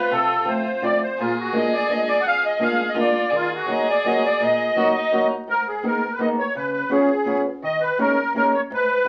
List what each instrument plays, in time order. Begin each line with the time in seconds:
Already playing: violin F4, accordion B4
0.10 steel-string acoustic guitar C3, accordion A4
0.45 steel-string acoustic guitar F3 A3 C4 F4, accordion C5
0.82 steel-string acoustic guitar F3 A3 C4 F4, accordion D5
1.03 accordion C5
1.17 steel-string acoustic guitar A#2, accordion F4, violin G#4
1.39 accordion F#4
1.52 steel-string acoustic guitar G#3 A#3 D4 F4, accordion D#5
1.73 accordion D5
1.89 steel-string acoustic guitar G#3 A#3 D4 F4, accordion D#5
2.08 accordion D5
2.20 steel-string acoustic guitar F2, accordion F#5
2.28 accordion F5
2.46 accordion D#5
2.59 steel-string acoustic guitar G#3 A#3 D4 F4, violin G#4, accordion F5
2.89 accordion D#5
2.94 steel-string acoustic guitar G#3 A#3 D4 F4, violin F4
3.00 accordion D5
3.30 steel-string acoustic guitar D#3, violin G#4
3.35 accordion F4
3.56 accordion F#4
3.66 steel-string acoustic guitar F#3 A#3 D#4 F#4
3.71 accordion D#5
3.90 accordion D5
4.04 steel-string acoustic guitar F#3 A#3 D#4 F#4, accordion D#5
4.26 accordion D5
4.40 steel-string acoustic guitar A#2, accordion D#5
4.76 steel-string acoustic guitar F#3 A#3 D#4 F#4, violin F#4
4.95 violin D#4
5.11 steel-string acoustic guitar F#3 A#3 D#4 F#4
5.48 steel-string acoustic guitar G#2, accordion A#4
5.68 accordion G#4
5.83 steel-string acoustic guitar A#3 B3 D#4 G#4, accordion A#4
6.13 accordion B4
6.19 steel-string acoustic guitar A#3 B3 D#4 G#4, accordion D#5
6.39 accordion C#5
6.55 steel-string acoustic guitar C#3, accordion B4
6.72 accordion B4
6.89 steel-string acoustic guitar B3 C#4 F4 G#4, accordion G#4
7.25 steel-string acoustic guitar B3 C#4 F4 G#4
7.62 steel-string acoustic guitar D#3, accordion D#5
7.81 accordion B4
7.98 steel-string acoustic guitar A#3 C#4 D#4 G#4, accordion A#4
8.34 steel-string acoustic guitar A#3 C#4 D#4 G#4, accordion A#4
8.54 accordion C#5
8.70 steel-string acoustic guitar G#2, accordion B4
9.05 steel-string acoustic guitar G#3